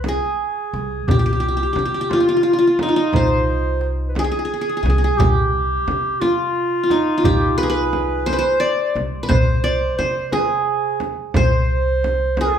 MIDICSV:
0, 0, Header, 1, 6, 480
1, 0, Start_track
1, 0, Tempo, 684775
1, 754, Time_signature, 6, 3, 24, 8
1, 8822, End_track
2, 0, Start_track
2, 0, Title_t, "Clarinet"
2, 0, Program_c, 0, 71
2, 38, Note_on_c, 0, 68, 72
2, 754, Note_on_c, 0, 67, 71
2, 765, Note_off_c, 0, 68, 0
2, 1468, Note_on_c, 0, 65, 68
2, 1479, Note_off_c, 0, 67, 0
2, 1518, Note_on_c, 0, 67, 58
2, 1528, Note_off_c, 0, 65, 0
2, 1566, Note_on_c, 0, 65, 71
2, 1576, Note_off_c, 0, 67, 0
2, 1962, Note_on_c, 0, 63, 71
2, 1972, Note_off_c, 0, 65, 0
2, 2043, Note_off_c, 0, 63, 0
2, 2047, Note_on_c, 0, 63, 72
2, 2200, Note_on_c, 0, 72, 79
2, 2211, Note_off_c, 0, 63, 0
2, 2729, Note_off_c, 0, 72, 0
2, 2862, Note_on_c, 0, 71, 50
2, 2917, Note_on_c, 0, 68, 87
2, 2927, Note_off_c, 0, 71, 0
2, 3627, Note_on_c, 0, 67, 83
2, 3638, Note_off_c, 0, 68, 0
2, 4351, Note_on_c, 0, 65, 79
2, 4361, Note_off_c, 0, 67, 0
2, 5072, Note_on_c, 0, 67, 73
2, 5082, Note_off_c, 0, 65, 0
2, 5319, Note_on_c, 0, 71, 76
2, 5329, Note_off_c, 0, 67, 0
2, 5396, Note_off_c, 0, 71, 0
2, 5400, Note_on_c, 0, 71, 76
2, 5793, Note_on_c, 0, 72, 83
2, 5803, Note_off_c, 0, 71, 0
2, 6029, Note_on_c, 0, 74, 84
2, 6040, Note_off_c, 0, 72, 0
2, 6324, Note_off_c, 0, 74, 0
2, 6520, Note_on_c, 0, 72, 79
2, 6970, Note_off_c, 0, 72, 0
2, 6988, Note_on_c, 0, 72, 79
2, 7237, Note_on_c, 0, 68, 77
2, 7248, Note_off_c, 0, 72, 0
2, 7279, Note_on_c, 0, 71, 64
2, 7290, Note_off_c, 0, 68, 0
2, 7330, Note_on_c, 0, 68, 84
2, 7341, Note_off_c, 0, 71, 0
2, 7774, Note_off_c, 0, 68, 0
2, 7953, Note_on_c, 0, 72, 88
2, 8675, Note_on_c, 0, 68, 78
2, 8686, Note_off_c, 0, 72, 0
2, 8822, Note_off_c, 0, 68, 0
2, 8822, End_track
3, 0, Start_track
3, 0, Title_t, "Qanun"
3, 0, Program_c, 1, 107
3, 59, Note_on_c, 1, 68, 78
3, 778, Note_on_c, 1, 67, 75
3, 820, Note_off_c, 1, 68, 0
3, 832, Note_off_c, 1, 67, 0
3, 835, Note_on_c, 1, 67, 59
3, 879, Note_off_c, 1, 67, 0
3, 882, Note_on_c, 1, 67, 63
3, 927, Note_off_c, 1, 67, 0
3, 930, Note_on_c, 1, 67, 54
3, 979, Note_off_c, 1, 67, 0
3, 981, Note_on_c, 1, 67, 60
3, 1038, Note_off_c, 1, 67, 0
3, 1040, Note_on_c, 1, 67, 50
3, 1096, Note_off_c, 1, 67, 0
3, 1099, Note_on_c, 1, 67, 57
3, 1139, Note_off_c, 1, 67, 0
3, 1142, Note_on_c, 1, 67, 47
3, 1209, Note_off_c, 1, 67, 0
3, 1212, Note_on_c, 1, 67, 53
3, 1249, Note_off_c, 1, 67, 0
3, 1252, Note_on_c, 1, 67, 48
3, 1297, Note_off_c, 1, 67, 0
3, 1300, Note_on_c, 1, 67, 58
3, 1359, Note_off_c, 1, 67, 0
3, 1362, Note_on_c, 1, 67, 55
3, 1405, Note_off_c, 1, 67, 0
3, 1408, Note_on_c, 1, 67, 67
3, 1493, Note_on_c, 1, 65, 76
3, 1542, Note_off_c, 1, 65, 0
3, 1544, Note_on_c, 1, 65, 60
3, 1600, Note_off_c, 1, 65, 0
3, 1602, Note_on_c, 1, 65, 69
3, 1656, Note_off_c, 1, 65, 0
3, 1659, Note_on_c, 1, 65, 57
3, 1701, Note_off_c, 1, 65, 0
3, 1704, Note_on_c, 1, 65, 68
3, 1773, Note_off_c, 1, 65, 0
3, 1776, Note_on_c, 1, 65, 60
3, 1809, Note_off_c, 1, 65, 0
3, 1812, Note_on_c, 1, 65, 69
3, 1871, Note_off_c, 1, 65, 0
3, 1873, Note_on_c, 1, 65, 51
3, 1981, Note_on_c, 1, 63, 75
3, 2020, Note_off_c, 1, 65, 0
3, 2023, Note_on_c, 1, 65, 62
3, 2073, Note_off_c, 1, 63, 0
3, 2076, Note_on_c, 1, 63, 80
3, 2215, Note_on_c, 1, 72, 88
3, 2288, Note_off_c, 1, 67, 0
3, 2937, Note_on_c, 1, 68, 88
3, 2955, Note_off_c, 1, 72, 0
3, 2966, Note_off_c, 1, 65, 0
3, 2972, Note_off_c, 1, 68, 0
3, 2974, Note_on_c, 1, 68, 64
3, 3022, Note_off_c, 1, 68, 0
3, 3025, Note_on_c, 1, 68, 66
3, 3074, Note_off_c, 1, 68, 0
3, 3076, Note_on_c, 1, 68, 56
3, 3087, Note_off_c, 1, 63, 0
3, 3116, Note_off_c, 1, 68, 0
3, 3119, Note_on_c, 1, 68, 60
3, 3176, Note_off_c, 1, 68, 0
3, 3179, Note_on_c, 1, 68, 52
3, 3231, Note_off_c, 1, 68, 0
3, 3234, Note_on_c, 1, 68, 64
3, 3287, Note_off_c, 1, 68, 0
3, 3290, Note_on_c, 1, 68, 48
3, 3339, Note_off_c, 1, 68, 0
3, 3342, Note_on_c, 1, 68, 57
3, 3380, Note_off_c, 1, 68, 0
3, 3383, Note_on_c, 1, 68, 49
3, 3430, Note_off_c, 1, 68, 0
3, 3432, Note_on_c, 1, 68, 59
3, 3489, Note_off_c, 1, 68, 0
3, 3492, Note_on_c, 1, 68, 57
3, 3531, Note_off_c, 1, 68, 0
3, 3534, Note_on_c, 1, 68, 71
3, 3643, Note_on_c, 1, 67, 84
3, 3685, Note_off_c, 1, 68, 0
3, 4356, Note_on_c, 1, 65, 77
3, 4523, Note_off_c, 1, 67, 0
3, 4788, Note_off_c, 1, 65, 0
3, 4791, Note_on_c, 1, 65, 55
3, 4844, Note_on_c, 1, 63, 80
3, 5027, Note_off_c, 1, 65, 0
3, 5030, Note_on_c, 1, 65, 65
3, 5083, Note_on_c, 1, 67, 95
3, 5311, Note_on_c, 1, 71, 94
3, 5348, Note_on_c, 1, 68, 79
3, 5390, Note_off_c, 1, 67, 0
3, 5391, Note_off_c, 1, 71, 0
3, 5394, Note_on_c, 1, 71, 96
3, 5792, Note_on_c, 1, 72, 95
3, 5834, Note_off_c, 1, 71, 0
3, 5837, Note_on_c, 1, 71, 81
3, 5855, Note_off_c, 1, 63, 0
3, 5875, Note_off_c, 1, 72, 0
3, 5878, Note_on_c, 1, 72, 95
3, 5920, Note_off_c, 1, 71, 0
3, 5973, Note_off_c, 1, 65, 0
3, 6027, Note_on_c, 1, 74, 101
3, 6198, Note_off_c, 1, 68, 0
3, 6470, Note_on_c, 1, 71, 78
3, 6506, Note_off_c, 1, 72, 0
3, 6509, Note_on_c, 1, 72, 96
3, 6551, Note_off_c, 1, 71, 0
3, 6718, Note_off_c, 1, 74, 0
3, 6755, Note_on_c, 1, 74, 95
3, 6997, Note_off_c, 1, 72, 0
3, 7000, Note_on_c, 1, 72, 84
3, 7239, Note_on_c, 1, 68, 92
3, 7446, Note_off_c, 1, 74, 0
3, 7739, Note_off_c, 1, 72, 0
3, 7966, Note_on_c, 1, 72, 100
3, 8089, Note_off_c, 1, 68, 0
3, 8697, Note_on_c, 1, 68, 88
3, 8706, Note_off_c, 1, 72, 0
3, 8822, Note_off_c, 1, 68, 0
3, 8822, End_track
4, 0, Start_track
4, 0, Title_t, "Upright bass"
4, 0, Program_c, 2, 32
4, 0, Note_on_c, 2, 36, 82
4, 124, Note_off_c, 2, 36, 0
4, 515, Note_on_c, 2, 36, 82
4, 715, Note_off_c, 2, 36, 0
4, 756, Note_on_c, 2, 36, 85
4, 1157, Note_off_c, 2, 36, 0
4, 1227, Note_on_c, 2, 48, 81
4, 2034, Note_off_c, 2, 48, 0
4, 2191, Note_on_c, 2, 36, 86
4, 2997, Note_off_c, 2, 36, 0
4, 3384, Note_on_c, 2, 36, 87
4, 3589, Note_off_c, 2, 36, 0
4, 3635, Note_on_c, 2, 36, 89
4, 4037, Note_off_c, 2, 36, 0
4, 4117, Note_on_c, 2, 48, 72
4, 4920, Note_off_c, 2, 48, 0
4, 5072, Note_on_c, 2, 36, 77
4, 5878, Note_off_c, 2, 36, 0
4, 6277, Note_on_c, 2, 36, 84
4, 6477, Note_off_c, 2, 36, 0
4, 6518, Note_on_c, 2, 36, 80
4, 6919, Note_off_c, 2, 36, 0
4, 7001, Note_on_c, 2, 48, 69
4, 7803, Note_off_c, 2, 48, 0
4, 7959, Note_on_c, 2, 36, 87
4, 8762, Note_off_c, 2, 36, 0
4, 8822, End_track
5, 0, Start_track
5, 0, Title_t, "Darbuka"
5, 34, Note_on_c, 9, 63, 71
5, 105, Note_off_c, 9, 63, 0
5, 282, Note_on_c, 9, 62, 23
5, 352, Note_off_c, 9, 62, 0
5, 518, Note_on_c, 9, 63, 66
5, 588, Note_off_c, 9, 63, 0
5, 756, Note_on_c, 9, 64, 92
5, 826, Note_off_c, 9, 64, 0
5, 1237, Note_on_c, 9, 63, 56
5, 1307, Note_off_c, 9, 63, 0
5, 1475, Note_on_c, 9, 63, 69
5, 1545, Note_off_c, 9, 63, 0
5, 1723, Note_on_c, 9, 62, 25
5, 1793, Note_off_c, 9, 62, 0
5, 1961, Note_on_c, 9, 63, 70
5, 2031, Note_off_c, 9, 63, 0
5, 2200, Note_on_c, 9, 64, 79
5, 2270, Note_off_c, 9, 64, 0
5, 2671, Note_on_c, 9, 63, 59
5, 2741, Note_off_c, 9, 63, 0
5, 2912, Note_on_c, 9, 63, 65
5, 2982, Note_off_c, 9, 63, 0
5, 3153, Note_on_c, 9, 62, 24
5, 3223, Note_off_c, 9, 62, 0
5, 3395, Note_on_c, 9, 63, 64
5, 3466, Note_off_c, 9, 63, 0
5, 3633, Note_on_c, 9, 64, 85
5, 3703, Note_off_c, 9, 64, 0
5, 4118, Note_on_c, 9, 63, 62
5, 4188, Note_off_c, 9, 63, 0
5, 4360, Note_on_c, 9, 63, 65
5, 4430, Note_off_c, 9, 63, 0
5, 4596, Note_on_c, 9, 62, 25
5, 4666, Note_off_c, 9, 62, 0
5, 4831, Note_on_c, 9, 63, 65
5, 4901, Note_off_c, 9, 63, 0
5, 5069, Note_on_c, 9, 64, 74
5, 5139, Note_off_c, 9, 64, 0
5, 5560, Note_on_c, 9, 63, 64
5, 5630, Note_off_c, 9, 63, 0
5, 5799, Note_on_c, 9, 63, 62
5, 5869, Note_off_c, 9, 63, 0
5, 6041, Note_on_c, 9, 62, 26
5, 6111, Note_off_c, 9, 62, 0
5, 6278, Note_on_c, 9, 63, 59
5, 6348, Note_off_c, 9, 63, 0
5, 6519, Note_on_c, 9, 64, 86
5, 6589, Note_off_c, 9, 64, 0
5, 7004, Note_on_c, 9, 63, 59
5, 7074, Note_off_c, 9, 63, 0
5, 7242, Note_on_c, 9, 63, 62
5, 7312, Note_off_c, 9, 63, 0
5, 7479, Note_on_c, 9, 62, 26
5, 7549, Note_off_c, 9, 62, 0
5, 7720, Note_on_c, 9, 63, 60
5, 7790, Note_off_c, 9, 63, 0
5, 7963, Note_on_c, 9, 64, 89
5, 8033, Note_off_c, 9, 64, 0
5, 8443, Note_on_c, 9, 63, 62
5, 8513, Note_off_c, 9, 63, 0
5, 8681, Note_on_c, 9, 63, 65
5, 8751, Note_off_c, 9, 63, 0
5, 8822, End_track
6, 0, Start_track
6, 0, Title_t, "Frame drum"
6, 28, Note_on_c, 9, 64, 67
6, 98, Note_off_c, 9, 64, 0
6, 761, Note_on_c, 9, 64, 81
6, 831, Note_off_c, 9, 64, 0
6, 1233, Note_on_c, 9, 64, 57
6, 1303, Note_off_c, 9, 64, 0
6, 1478, Note_on_c, 9, 64, 69
6, 1548, Note_off_c, 9, 64, 0
6, 1956, Note_on_c, 9, 64, 64
6, 2026, Note_off_c, 9, 64, 0
6, 2197, Note_on_c, 9, 64, 83
6, 2267, Note_off_c, 9, 64, 0
6, 2918, Note_on_c, 9, 64, 72
6, 2988, Note_off_c, 9, 64, 0
6, 3405, Note_on_c, 9, 64, 63
6, 3475, Note_off_c, 9, 64, 0
6, 3643, Note_on_c, 9, 64, 94
6, 3713, Note_off_c, 9, 64, 0
6, 4120, Note_on_c, 9, 64, 67
6, 4190, Note_off_c, 9, 64, 0
6, 4361, Note_on_c, 9, 64, 62
6, 4431, Note_off_c, 9, 64, 0
6, 4840, Note_on_c, 9, 64, 58
6, 4910, Note_off_c, 9, 64, 0
6, 5080, Note_on_c, 9, 64, 83
6, 5150, Note_off_c, 9, 64, 0
6, 5558, Note_on_c, 9, 64, 61
6, 5628, Note_off_c, 9, 64, 0
6, 5801, Note_on_c, 9, 64, 65
6, 5871, Note_off_c, 9, 64, 0
6, 6284, Note_on_c, 9, 64, 51
6, 6354, Note_off_c, 9, 64, 0
6, 6514, Note_on_c, 9, 64, 95
6, 6584, Note_off_c, 9, 64, 0
6, 7003, Note_on_c, 9, 64, 57
6, 7073, Note_off_c, 9, 64, 0
6, 7237, Note_on_c, 9, 64, 62
6, 7307, Note_off_c, 9, 64, 0
6, 7712, Note_on_c, 9, 64, 61
6, 7782, Note_off_c, 9, 64, 0
6, 7950, Note_on_c, 9, 64, 88
6, 8021, Note_off_c, 9, 64, 0
6, 8442, Note_on_c, 9, 64, 62
6, 8512, Note_off_c, 9, 64, 0
6, 8672, Note_on_c, 9, 64, 69
6, 8742, Note_off_c, 9, 64, 0
6, 8822, End_track
0, 0, End_of_file